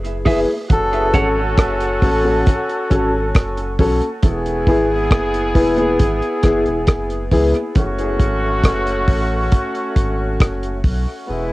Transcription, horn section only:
0.69 3.75 C#4 medium
0.69 3.75 F#4 medium
0.69 3.75 A4 medium
4.23 7.28 B3 medium
4.23 7.28 E4 medium
4.23 7.28 G#4 loud
7.75 10.80 A3 medium
7.75 10.81 C#4 medium
7.75 10.80 F#4 loud
11.27 11.53 G#3 medium
11.27 11.53 B3 medium
11.27 11.53 E4 loud

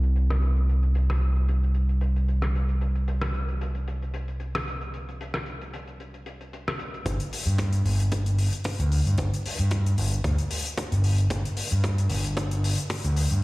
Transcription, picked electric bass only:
0.00 7.04 C2 medium
7.06 7.17 G1 medium
7.47 7.80 G2 medium
7.86 8.47 G1 medium
8.80 8.99 D2 medium
9.07 9.15 G2 medium
9.18 9.29 G1 medium
9.59 9.93 G2 medium
9.98 10.18 G1 medium
10.24 10.35 D2 medium
10.92 11.26 G1 medium
11.31 11.42 G1 loud
11.72 12.05 G2 medium
12.10 12.72 G1 medium
13.04 13.24 D2 medium
13.31 13.40 G2 medium

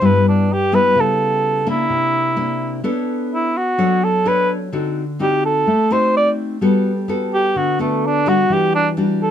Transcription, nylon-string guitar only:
0.01 0.93 G2 medium
0.01 0.48 G3 soft
0.01 0.48 B3 medium
0.01 0.48 E4 medium
0.72 1.62 G3 medium
0.72 1.63 B3 medium
0.72 1.63 E4 medium
0.96 1.87 C#3 medium
1.66 2.33 A#3 medium
1.66 2.33 D4 medium
1.66 2.33 E4 medium
1.90 2.81 C3 medium
2.36 2.82 A#3 soft
2.36 2.82 D4 medium
2.36 2.82 E4 medium
2.84 3.75 B3 medium
2.84 3.47 D4 medium
2.84 3.47 A4 medium
2.84 3.47 C#5 medium
3.78 4.70 F#3 medium
3.78 4.08 D4 medium
3.78 4.08 A4 medium
3.78 4.09 C#5 medium
4.25 4.57 D4 medium
4.25 4.57 A4 soft
4.25 4.57 C#5 medium
4.72 5.64 D3 medium
4.72 5.03 C4 soft
4.72 5.03 D#4 medium
4.72 5.03 F#4 medium
5.19 5.66 C4 soft
5.19 5.66 D#4 soft
5.19 5.67 F#4 medium
5.67 6.59 A3 medium
5.91 6.57 C4 medium
5.91 6.57 D#4 medium
5.91 6.58 F#4 medium
6.61 7.53 G3 medium
6.61 6.91 B3 medium
6.61 6.91 F#4 medium
6.61 6.92 A4 medium
7.08 7.75 B3 soft
7.08 7.75 F#4 medium
7.08 7.75 A4 medium
7.56 8.47 D3 medium
7.79 8.22 B3 medium
7.79 8.22 F#4 medium
7.79 8.22 A4 medium
8.26 8.92 G3 medium
8.26 8.93 D4 medium
8.26 8.93 F#4 medium
8.50 9.31 E3 medium
8.97 9.28 G3 medium
8.97 9.28 D4 medium
8.97 9.29 F#4 medium

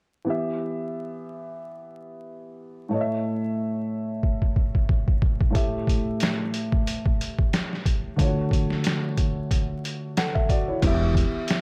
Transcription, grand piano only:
0.25 2.86 E3 medium
0.25 2.87 B3 medium
0.25 2.88 G4 medium
0.30 2.89 E5 medium
2.89 5.49 A2 medium
2.89 5.51 A3 medium
2.89 5.52 C#5 medium
2.94 3.00 D#5 medium
3.01 5.55 E5 medium
5.51 8.13 A2 medium
5.51 8.14 A3 medium
5.51 8.14 G4 medium
5.56 8.15 E5 medium
8.16 10.11 D3 medium
8.16 10.12 A3 medium
8.16 8.27 F4 medium
8.22 10.14 C#5 medium
8.26 10.16 F#4 medium
10.17 10.35 A4 medium
10.17 10.35 F#5 medium
10.35 10.49 E5 medium
10.50 10.68 F#4 medium
10.50 10.68 D5 medium
10.68 11.00 E4 medium
10.68 10.99 C#5 medium
10.82 11.61 E3 medium
10.82 11.61 B3 medium
10.82 11.61 G4 medium
10.87 11.61 E5 medium

